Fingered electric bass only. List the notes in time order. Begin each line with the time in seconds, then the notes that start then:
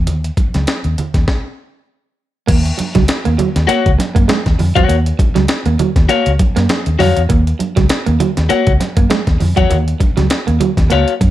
0.07 D#2
0.55 C#2
0.85 D#2
1.14 D#2
2.49 D#2
2.96 C#2
3.26 D#2
3.56 D#2
3.70 muted fingered electric bass stroke
3.86 C#2
4.16 F#2
4.46 D#2
4.59 F2
4.77 E2
4.89 D#2
5.36 C#2
5.66 D#2
5.96 D#2
6.10 muted fingered electric bass stroke
6.27 C#2
6.57 F#2
6.87 D#2
7.00 F2
7.17 E2
7.30 D#2
7.77 C#2
8.08 D#2
8.38 D#2
8.51 muted fingered electric bass stroke
8.67 C#2
8.97 F#2
9.27 D#2
9.41 F2
9.57 E2
9.71 D#2
10.18 C#2
10.48 D#2
10.78 D#2
10.92 C#2
11.21 F#2